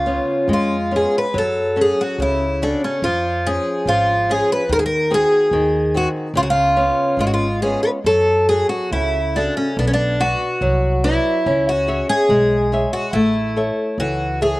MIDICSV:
0, 0, Header, 1, 4, 480
1, 0, Start_track
1, 0, Tempo, 858369
1, 748, Time_signature, 2, 2, 24, 8
1, 1223, Tempo, 834492
1, 4103, Tempo, 863309
1, 5543, Tempo, 843882
1, 8282, End_track
2, 0, Start_track
2, 0, Title_t, "Twelve-string acoustic guitar"
2, 0, Program_c, 0, 25
2, 0, Note_on_c, 0, 65, 83
2, 291, Note_off_c, 0, 65, 0
2, 298, Note_on_c, 0, 65, 72
2, 508, Note_off_c, 0, 65, 0
2, 536, Note_on_c, 0, 68, 72
2, 646, Note_off_c, 0, 68, 0
2, 660, Note_on_c, 0, 71, 77
2, 767, Note_off_c, 0, 71, 0
2, 772, Note_on_c, 0, 69, 84
2, 1005, Note_off_c, 0, 69, 0
2, 1014, Note_on_c, 0, 68, 78
2, 1121, Note_off_c, 0, 68, 0
2, 1124, Note_on_c, 0, 66, 76
2, 1225, Note_off_c, 0, 66, 0
2, 1242, Note_on_c, 0, 64, 73
2, 1476, Note_on_c, 0, 62, 80
2, 1481, Note_off_c, 0, 64, 0
2, 1583, Note_off_c, 0, 62, 0
2, 1600, Note_on_c, 0, 61, 71
2, 1712, Note_on_c, 0, 65, 84
2, 1716, Note_off_c, 0, 61, 0
2, 1956, Note_off_c, 0, 65, 0
2, 1958, Note_on_c, 0, 68, 87
2, 2200, Note_on_c, 0, 65, 84
2, 2201, Note_off_c, 0, 68, 0
2, 2442, Note_off_c, 0, 65, 0
2, 2444, Note_on_c, 0, 68, 90
2, 2559, Note_off_c, 0, 68, 0
2, 2566, Note_on_c, 0, 71, 82
2, 2678, Note_off_c, 0, 71, 0
2, 2683, Note_on_c, 0, 70, 100
2, 2714, Note_off_c, 0, 70, 0
2, 2720, Note_on_c, 0, 68, 83
2, 2751, Note_off_c, 0, 68, 0
2, 2759, Note_on_c, 0, 70, 93
2, 2915, Note_off_c, 0, 70, 0
2, 2922, Note_on_c, 0, 68, 94
2, 3398, Note_off_c, 0, 68, 0
2, 3400, Note_on_c, 0, 66, 87
2, 3461, Note_off_c, 0, 66, 0
2, 3629, Note_on_c, 0, 65, 93
2, 3660, Note_off_c, 0, 65, 0
2, 3662, Note_on_c, 0, 66, 76
2, 3697, Note_off_c, 0, 66, 0
2, 3705, Note_on_c, 0, 65, 94
2, 4103, Note_off_c, 0, 65, 0
2, 4110, Note_on_c, 0, 65, 76
2, 4142, Note_off_c, 0, 65, 0
2, 4144, Note_on_c, 0, 66, 68
2, 4180, Note_off_c, 0, 66, 0
2, 4182, Note_on_c, 0, 65, 73
2, 4339, Note_off_c, 0, 65, 0
2, 4341, Note_on_c, 0, 68, 83
2, 4453, Note_off_c, 0, 68, 0
2, 4456, Note_on_c, 0, 71, 74
2, 4489, Note_off_c, 0, 71, 0
2, 4587, Note_on_c, 0, 69, 94
2, 4820, Note_off_c, 0, 69, 0
2, 4822, Note_on_c, 0, 68, 85
2, 4934, Note_off_c, 0, 68, 0
2, 4936, Note_on_c, 0, 66, 80
2, 5064, Note_off_c, 0, 66, 0
2, 5066, Note_on_c, 0, 64, 76
2, 5307, Note_on_c, 0, 62, 76
2, 5312, Note_off_c, 0, 64, 0
2, 5421, Note_off_c, 0, 62, 0
2, 5424, Note_on_c, 0, 61, 79
2, 5543, Note_off_c, 0, 61, 0
2, 5545, Note_on_c, 0, 62, 84
2, 5583, Note_off_c, 0, 62, 0
2, 5595, Note_on_c, 0, 61, 76
2, 5627, Note_off_c, 0, 61, 0
2, 5629, Note_on_c, 0, 62, 91
2, 5783, Note_on_c, 0, 66, 87
2, 5790, Note_off_c, 0, 62, 0
2, 6258, Note_on_c, 0, 64, 93
2, 6277, Note_off_c, 0, 66, 0
2, 6626, Note_on_c, 0, 66, 86
2, 6627, Note_off_c, 0, 64, 0
2, 6855, Note_off_c, 0, 66, 0
2, 6857, Note_on_c, 0, 68, 98
2, 7331, Note_off_c, 0, 68, 0
2, 7333, Note_on_c, 0, 66, 80
2, 7447, Note_on_c, 0, 64, 87
2, 7454, Note_off_c, 0, 66, 0
2, 7938, Note_off_c, 0, 64, 0
2, 7940, Note_on_c, 0, 66, 83
2, 8164, Note_off_c, 0, 66, 0
2, 8181, Note_on_c, 0, 68, 82
2, 8282, Note_off_c, 0, 68, 0
2, 8282, End_track
3, 0, Start_track
3, 0, Title_t, "Nylon-string guitar"
3, 0, Program_c, 1, 24
3, 0, Note_on_c, 1, 49, 67
3, 34, Note_on_c, 1, 59, 50
3, 34, Note_on_c, 1, 61, 46
3, 39, Note_on_c, 1, 65, 54
3, 255, Note_off_c, 1, 49, 0
3, 273, Note_on_c, 1, 56, 63
3, 417, Note_off_c, 1, 59, 0
3, 418, Note_off_c, 1, 61, 0
3, 420, Note_off_c, 1, 65, 0
3, 510, Note_on_c, 1, 61, 42
3, 511, Note_on_c, 1, 59, 46
3, 514, Note_on_c, 1, 65, 46
3, 701, Note_off_c, 1, 59, 0
3, 701, Note_off_c, 1, 61, 0
3, 704, Note_off_c, 1, 65, 0
3, 737, Note_off_c, 1, 56, 0
3, 749, Note_on_c, 1, 54, 58
3, 984, Note_on_c, 1, 61, 47
3, 989, Note_on_c, 1, 66, 45
3, 990, Note_on_c, 1, 69, 56
3, 1209, Note_off_c, 1, 54, 0
3, 1229, Note_on_c, 1, 49, 63
3, 1367, Note_off_c, 1, 61, 0
3, 1368, Note_off_c, 1, 66, 0
3, 1370, Note_off_c, 1, 69, 0
3, 1473, Note_on_c, 1, 61, 49
3, 1473, Note_on_c, 1, 66, 42
3, 1477, Note_on_c, 1, 69, 54
3, 1661, Note_off_c, 1, 66, 0
3, 1662, Note_off_c, 1, 61, 0
3, 1665, Note_off_c, 1, 69, 0
3, 1694, Note_off_c, 1, 49, 0
3, 1717, Note_on_c, 1, 53, 63
3, 1957, Note_on_c, 1, 61, 49
3, 1960, Note_on_c, 1, 65, 44
3, 1961, Note_on_c, 1, 68, 57
3, 2179, Note_off_c, 1, 53, 0
3, 2193, Note_on_c, 1, 53, 65
3, 2339, Note_off_c, 1, 61, 0
3, 2339, Note_off_c, 1, 65, 0
3, 2341, Note_off_c, 1, 68, 0
3, 2434, Note_on_c, 1, 61, 50
3, 2438, Note_on_c, 1, 65, 43
3, 2441, Note_on_c, 1, 68, 56
3, 2622, Note_off_c, 1, 61, 0
3, 2623, Note_off_c, 1, 65, 0
3, 2626, Note_off_c, 1, 68, 0
3, 2654, Note_off_c, 1, 53, 0
3, 2664, Note_on_c, 1, 51, 63
3, 2901, Note_on_c, 1, 60, 53
3, 2903, Note_on_c, 1, 66, 49
3, 2906, Note_on_c, 1, 68, 53
3, 3127, Note_off_c, 1, 51, 0
3, 3145, Note_on_c, 1, 51, 69
3, 3286, Note_off_c, 1, 60, 0
3, 3286, Note_off_c, 1, 66, 0
3, 3286, Note_off_c, 1, 68, 0
3, 3384, Note_on_c, 1, 60, 54
3, 3388, Note_on_c, 1, 66, 50
3, 3393, Note_on_c, 1, 68, 55
3, 3571, Note_off_c, 1, 60, 0
3, 3575, Note_off_c, 1, 66, 0
3, 3576, Note_off_c, 1, 68, 0
3, 3604, Note_off_c, 1, 51, 0
3, 3620, Note_on_c, 1, 49, 66
3, 3856, Note_on_c, 1, 59, 50
3, 3857, Note_on_c, 1, 61, 47
3, 3859, Note_on_c, 1, 65, 56
3, 4088, Note_off_c, 1, 49, 0
3, 4101, Note_on_c, 1, 56, 61
3, 4248, Note_off_c, 1, 59, 0
3, 4249, Note_off_c, 1, 61, 0
3, 4250, Note_off_c, 1, 65, 0
3, 4343, Note_on_c, 1, 59, 45
3, 4346, Note_on_c, 1, 61, 41
3, 4349, Note_on_c, 1, 65, 50
3, 4537, Note_off_c, 1, 59, 0
3, 4539, Note_off_c, 1, 61, 0
3, 4539, Note_off_c, 1, 65, 0
3, 4571, Note_off_c, 1, 56, 0
3, 4589, Note_on_c, 1, 54, 61
3, 4824, Note_on_c, 1, 66, 47
3, 4830, Note_on_c, 1, 69, 55
3, 4831, Note_on_c, 1, 68, 45
3, 5055, Note_off_c, 1, 54, 0
3, 5068, Note_on_c, 1, 49, 63
3, 5209, Note_off_c, 1, 66, 0
3, 5212, Note_off_c, 1, 68, 0
3, 5212, Note_off_c, 1, 69, 0
3, 5307, Note_on_c, 1, 66, 44
3, 5312, Note_on_c, 1, 68, 44
3, 5315, Note_on_c, 1, 69, 53
3, 5495, Note_off_c, 1, 66, 0
3, 5498, Note_off_c, 1, 68, 0
3, 5500, Note_off_c, 1, 69, 0
3, 5527, Note_off_c, 1, 49, 0
3, 5548, Note_on_c, 1, 59, 64
3, 5779, Note_off_c, 1, 59, 0
3, 5779, Note_on_c, 1, 66, 50
3, 5782, Note_on_c, 1, 71, 47
3, 5785, Note_on_c, 1, 74, 56
3, 6017, Note_on_c, 1, 54, 71
3, 6165, Note_off_c, 1, 66, 0
3, 6165, Note_off_c, 1, 71, 0
3, 6168, Note_off_c, 1, 74, 0
3, 6259, Note_on_c, 1, 66, 52
3, 6261, Note_on_c, 1, 71, 45
3, 6264, Note_on_c, 1, 74, 58
3, 6450, Note_off_c, 1, 66, 0
3, 6451, Note_off_c, 1, 71, 0
3, 6453, Note_off_c, 1, 74, 0
3, 6482, Note_off_c, 1, 54, 0
3, 6499, Note_on_c, 1, 61, 68
3, 6733, Note_on_c, 1, 68, 54
3, 6736, Note_on_c, 1, 73, 51
3, 6738, Note_on_c, 1, 76, 56
3, 6958, Note_off_c, 1, 61, 0
3, 6973, Note_on_c, 1, 56, 72
3, 7114, Note_off_c, 1, 68, 0
3, 7115, Note_off_c, 1, 73, 0
3, 7117, Note_off_c, 1, 76, 0
3, 7214, Note_on_c, 1, 68, 50
3, 7217, Note_on_c, 1, 73, 46
3, 7222, Note_on_c, 1, 76, 57
3, 7403, Note_off_c, 1, 68, 0
3, 7406, Note_off_c, 1, 73, 0
3, 7407, Note_off_c, 1, 76, 0
3, 7434, Note_off_c, 1, 56, 0
3, 7456, Note_on_c, 1, 57, 68
3, 7693, Note_on_c, 1, 69, 47
3, 7696, Note_on_c, 1, 73, 45
3, 7699, Note_on_c, 1, 76, 54
3, 7921, Note_off_c, 1, 57, 0
3, 7939, Note_on_c, 1, 52, 65
3, 8082, Note_off_c, 1, 69, 0
3, 8082, Note_off_c, 1, 73, 0
3, 8085, Note_off_c, 1, 76, 0
3, 8174, Note_on_c, 1, 69, 44
3, 8179, Note_on_c, 1, 76, 52
3, 8180, Note_on_c, 1, 73, 41
3, 8282, Note_off_c, 1, 52, 0
3, 8282, Note_off_c, 1, 69, 0
3, 8282, Note_off_c, 1, 73, 0
3, 8282, Note_off_c, 1, 76, 0
3, 8282, End_track
4, 0, Start_track
4, 0, Title_t, "Upright bass"
4, 0, Program_c, 2, 32
4, 0, Note_on_c, 2, 37, 94
4, 98, Note_off_c, 2, 37, 0
4, 266, Note_on_c, 2, 41, 86
4, 579, Note_off_c, 2, 41, 0
4, 749, Note_on_c, 2, 42, 82
4, 1057, Note_off_c, 2, 42, 0
4, 1219, Note_on_c, 2, 37, 82
4, 1533, Note_off_c, 2, 37, 0
4, 1704, Note_on_c, 2, 41, 90
4, 2018, Note_off_c, 2, 41, 0
4, 2183, Note_on_c, 2, 32, 82
4, 2495, Note_off_c, 2, 32, 0
4, 2662, Note_on_c, 2, 39, 88
4, 2973, Note_off_c, 2, 39, 0
4, 3136, Note_on_c, 2, 39, 88
4, 3447, Note_off_c, 2, 39, 0
4, 3609, Note_on_c, 2, 37, 94
4, 3927, Note_off_c, 2, 37, 0
4, 4090, Note_on_c, 2, 32, 81
4, 4409, Note_off_c, 2, 32, 0
4, 4575, Note_on_c, 2, 42, 85
4, 4892, Note_off_c, 2, 42, 0
4, 5058, Note_on_c, 2, 37, 85
4, 5369, Note_off_c, 2, 37, 0
4, 5534, Note_on_c, 2, 35, 96
4, 5848, Note_off_c, 2, 35, 0
4, 6013, Note_on_c, 2, 36, 91
4, 6326, Note_off_c, 2, 36, 0
4, 6497, Note_on_c, 2, 37, 95
4, 6806, Note_off_c, 2, 37, 0
4, 6969, Note_on_c, 2, 35, 94
4, 7279, Note_off_c, 2, 35, 0
4, 7446, Note_on_c, 2, 33, 89
4, 7761, Note_off_c, 2, 33, 0
4, 7928, Note_on_c, 2, 37, 87
4, 8249, Note_off_c, 2, 37, 0
4, 8282, End_track
0, 0, End_of_file